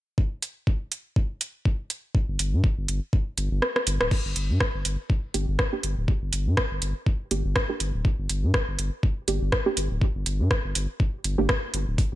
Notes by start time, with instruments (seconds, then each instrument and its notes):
0.18 kick
0.42 closed hi-hat
0.67 kick
0.92 closed hi-hat
1.16 kick
1.41 closed hi-hat
1.65 kick
1.90 closed hi-hat
2.15 kick
2.28 sub bass G1
2.39 sub bass G1, closed hi-hat
2.53 sub bass G2
2.64 kick
2.78 sub bass G1
2.88 sub bass G1, closed hi-hat
3.13 kick
3.38 sub bass G1, closed hi-hat
3.51 sub bass G1
3.62 cross-stick
3.76 cross-stick
3.87 sub bass G1, closed hi-hat
4.01 sub bass D1, cross-stick
4.11 kick, crash
4.25 sub bass G1
4.36 sub bass G1, closed hi-hat
4.50 sub bass G2
4.60 kick, cross-stick
4.75 sub bass G1
4.85 sub bass G1, closed hi-hat
5.10 kick
5.34 sub bass G1, synth stab A#3 D4 G4, closed hi-hat
5.48 sub bass G1
5.59 kick, cross-stick
5.73 synth stab A#3 D4 G4
5.83 sub bass G1, closed hi-hat
5.97 sub bass D1
6.08 kick
6.22 sub bass G1
6.33 sub bass G1, closed hi-hat
6.47 sub bass G2
6.57 kick, cross-stick
6.71 sub bass G1
6.82 sub bass G1, closed hi-hat
7.06 kick
7.31 sub bass G1, synth stab A#3 D4 G4, closed hi-hat
7.45 sub bass G1
7.56 kick, cross-stick
7.69 synth stab A#3 D4 G4
7.80 sub bass G1, closed hi-hat
7.94 sub bass D1
8.05 kick
8.19 sub bass G1
8.29 sub bass G1, closed hi-hat
8.43 sub bass G2
8.54 kick, cross-stick
8.68 sub bass G1
8.79 sub bass G1, closed hi-hat
9.03 kick
9.28 sub bass G1, synth stab A#3 D4 G4, closed hi-hat
9.42 sub bass G1
9.52 kick, cross-stick
9.66 synth stab A#3 D4 G4
9.77 sub bass G1, closed hi-hat
9.91 sub bass D1
10.02 kick
10.15 sub bass G1
10.26 sub bass G1, closed hi-hat
10.40 sub bass G2
10.51 kick, cross-stick
10.64 sub bass G1
10.75 sub bass G1, closed hi-hat
11.00 kick
11.24 sub bass G1, closed hi-hat
11.38 sub bass G1, synth stab A#3 D4 G4
11.49 kick, cross-stick
11.74 sub bass G1, closed hi-hat
11.88 sub bass D1
11.98 kick, closed hi-hat
12.12 sub bass G1